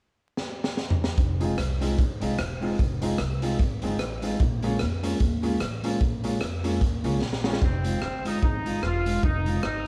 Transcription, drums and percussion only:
0.37 snare
0.64 snare
0.77 snare
0.90 floor tom
1.04 snare
1.17 kick, closed hi-hat
1.41 closed hi-hat
1.58 cross-stick, closed hi-hat
1.81 closed hi-hat
1.98 kick, closed hi-hat
2.21 closed hi-hat
2.38 cross-stick, closed hi-hat
2.62 open hi-hat
2.79 kick, closed hi-hat
3.02 closed hi-hat
3.18 cross-stick, closed hi-hat
3.42 closed hi-hat
3.59 kick, closed hi-hat
3.82 closed hi-hat
3.99 cross-stick, closed hi-hat
4.22 closed hi-hat
4.39 kick, closed hi-hat
4.63 closed hi-hat
4.79 cross-stick, closed hi-hat
5.04 closed hi-hat
5.20 kick, closed hi-hat
5.43 closed hi-hat
5.60 cross-stick, closed hi-hat
5.84 closed hi-hat
6.00 kick, closed hi-hat
6.24 closed hi-hat
6.41 cross-stick, closed hi-hat
6.64 closed hi-hat
6.81 kick, closed hi-hat
7.04 closed hi-hat
7.22 snare
7.33 snare
7.44 snare
7.53 snare
7.62 kick
7.84 closed hi-hat
8.02 cross-stick
8.25 closed hi-hat
8.43 kick
8.66 closed hi-hat
8.83 cross-stick
9.06 closed hi-hat
9.23 kick
9.46 closed hi-hat
9.63 cross-stick

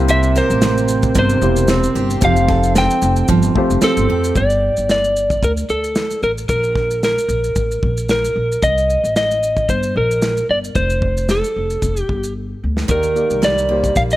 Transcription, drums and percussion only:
0.08 shaker
0.23 shaker
0.36 snare, shaker
0.50 shaker
0.62 snare, shaker
0.78 shaker
0.88 shaker
1.03 kick, shaker
1.15 kick, shaker
1.29 shaker
1.42 shaker
1.56 shaker
1.68 snare, shaker
1.84 shaker
1.96 shaker
2.10 shaker
2.21 kick, shaker
2.36 shaker
2.48 kick, snare
2.63 shaker
2.75 snare, shaker
2.91 shaker
3.02 shaker
3.16 shaker
3.28 kick, shaker
3.43 shaker
3.56 kick
3.70 shaker
3.81 snare, shaker
3.97 shaker
4.24 shaker
4.35 kick, shaker
4.50 shaker
4.77 shaker
4.89 snare, shaker
5.04 shaker
5.16 shaker
5.30 kick, shaker
5.43 kick, shaker
5.57 shaker
5.69 shaker
5.84 shaker
5.95 snare, shaker
6.11 shaker
6.23 shaker
6.38 shaker
6.49 kick, shaker
6.63 shaker
6.75 kick, snare
6.91 shaker
7.03 snare, shaker
7.18 shaker
7.29 shaker
7.44 shaker
7.56 kick, shaker
7.71 shaker
7.83 kick
7.97 shaker
8.09 snare, shaker
8.25 shaker
8.52 shaker
8.63 kick, shaker
8.78 shaker
8.90 shaker
9.05 shaker
9.16 snare, shaker
9.31 shaker
9.43 shaker
9.57 kick, shaker
9.69 kick, shaker
9.83 shaker
10.11 shaker
10.22 snare, shaker
10.37 shaker
10.64 shaker
10.75 kick, shaker
10.90 shaker
11.02 kick
11.17 shaker
11.29 snare, shaker
11.44 shaker
11.70 shaker
11.82 kick, shaker
11.97 shaker
12.09 kick
12.24 shaker
12.77 snare
12.89 kick, shaker
13.03 shaker
13.16 shaker
13.30 shaker
13.43 snare, shaker
13.58 shaker
13.84 kick, shaker
13.96 kick, shaker
14.11 shaker

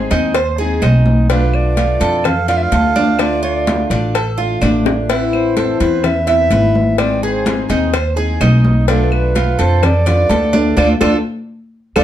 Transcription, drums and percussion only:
0.11 cowbell, high conga
0.34 cowbell, high conga, claves
0.59 high conga
0.82 cowbell, high conga, claves
1.06 high conga
1.30 cowbell
1.53 high conga, claves
1.77 cowbell, high conga
2.01 cowbell, high conga
2.24 cowbell, high conga, low conga, claves
2.49 cowbell, high conga
2.72 cowbell, high conga
2.96 high conga
3.19 cowbell, high conga, claves
3.44 high conga
3.67 cowbell, high conga
3.91 cowbell, high conga
4.15 cowbell, high conga, claves
4.39 high conga
4.62 cowbell, high conga, claves
4.86 high bongo, high conga
5.10 cowbell, high conga
5.33 high conga, claves
5.57 cowbell, high conga
5.81 cowbell, high conga
6.04 cowbell, high conga, low conga, claves
6.28 cowbell, high conga
6.51 cowbell, high conga
6.75 high conga
6.98 cowbell, high conga, claves
7.22 high conga
7.46 cowbell, high conga
7.70 cowbell, high conga
7.93 cowbell, high conga, claves
8.18 high conga
8.41 cowbell, high conga, claves
8.65 high conga
8.88 cowbell
9.12 high conga, claves
9.36 cowbell, high conga
9.60 cowbell, high conga
9.83 cowbell, high conga, low conga, claves
10.07 cowbell, high conga, low conga
10.31 cowbell, high conga
10.54 high conga
10.77 cowbell, high conga, claves
11.01 cowbell, high conga, claves
11.96 cowbell, high conga, claves

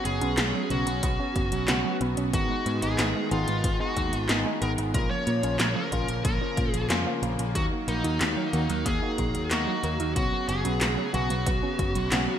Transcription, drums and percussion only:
0.05 closed hi-hat
0.21 closed hi-hat
0.38 snare, clap, closed hi-hat
0.70 closed hi-hat
0.87 closed hi-hat
1.03 kick, closed hi-hat
1.36 kick, closed hi-hat
1.52 closed hi-hat
1.68 snare, clap, closed hi-hat
2.01 closed hi-hat
2.17 closed hi-hat
2.33 kick, closed hi-hat
2.66 closed hi-hat
2.82 closed hi-hat
2.99 snare, clap, closed hi-hat
3.31 closed hi-hat
3.48 closed hi-hat
3.64 kick, closed hi-hat
3.97 kick, closed hi-hat
4.13 closed hi-hat
4.29 snare, clap, closed hi-hat
4.62 closed hi-hat
4.78 closed hi-hat
4.94 kick, closed hi-hat
5.27 closed hi-hat
5.43 closed hi-hat
5.60 snare, clap, closed hi-hat
5.92 kick, closed hi-hat
6.08 closed hi-hat
6.25 kick, closed hi-hat
6.57 kick, closed hi-hat
6.74 closed hi-hat
6.90 snare, clap, closed hi-hat
7.23 closed hi-hat
7.39 closed hi-hat
7.55 kick, closed hi-hat
7.88 closed hi-hat
8.04 closed hi-hat
8.21 snare, clap, closed hi-hat
8.53 closed hi-hat
8.70 closed hi-hat
8.86 kick, closed hi-hat
9.18 kick, closed hi-hat
9.35 closed hi-hat
9.51 snare, clap, closed hi-hat
9.84 closed hi-hat
10.00 closed hi-hat
10.16 kick, closed hi-hat
10.49 closed hi-hat
10.65 closed hi-hat
10.81 snare, clap, closed hi-hat
11.14 closed hi-hat
11.30 closed hi-hat
11.46 kick, closed hi-hat
11.79 kick, closed hi-hat
11.95 closed hi-hat
12.12 snare, clap, closed hi-hat

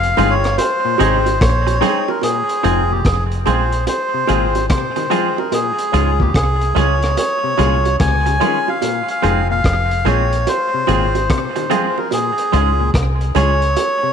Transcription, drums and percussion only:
0.03 closed hi-hat
0.17 closed hi-hat, low bongo
0.44 cross-stick, closed hi-hat
0.58 closed hi-hat, high bongo
0.98 closed hi-hat, high bongo
1.26 closed hi-hat, high bongo
1.41 kick, cross-stick, closed hi-hat
1.67 closed hi-hat, high bongo
1.82 closed hi-hat, low bongo
2.08 high bongo
2.22 closed hi-hat, high bongo
2.49 closed hi-hat
2.64 closed hi-hat, high bongo
3.05 kick, cross-stick, closed hi-hat
3.32 closed hi-hat
3.46 closed hi-hat, low bongo
3.72 closed hi-hat
3.87 closed hi-hat, high bongo
4.27 closed hi-hat, high bongo
4.55 closed hi-hat, high bongo
4.70 kick, cross-stick, closed hi-hat
4.96 closed hi-hat, high bongo
5.11 closed hi-hat, low bongo
5.38 high bongo
5.52 closed hi-hat, high bongo
5.78 closed hi-hat
5.94 closed hi-hat, high bongo
6.20 kick
6.34 kick, cross-stick, closed hi-hat
6.61 closed hi-hat
6.76 closed hi-hat, low bongo
7.02 cross-stick, closed hi-hat
7.17 closed hi-hat, high bongo
7.58 closed hi-hat, high bongo
7.85 closed hi-hat, high bongo
8.00 kick, cross-stick, closed hi-hat
8.26 closed hi-hat, high bongo
8.41 closed hi-hat, low bongo
8.68 high bongo
8.82 closed hi-hat, high bongo
9.08 closed hi-hat
9.23 closed hi-hat, high bongo
9.64 kick, cross-stick, closed hi-hat
9.91 closed hi-hat
10.05 closed hi-hat, low bongo
10.33 closed hi-hat
10.47 closed hi-hat, high bongo
10.87 closed hi-hat, high bongo
11.15 closed hi-hat, high bongo
11.30 kick, cross-stick, closed hi-hat
11.56 closed hi-hat, high bongo
11.71 closed hi-hat, low bongo
11.98 high bongo
12.11 closed hi-hat, high bongo
12.38 closed hi-hat
12.53 closed hi-hat
12.94 kick, cross-stick, closed hi-hat
13.21 closed hi-hat
13.35 closed hi-hat, low bongo
13.62 closed hi-hat
13.77 closed hi-hat, high bongo

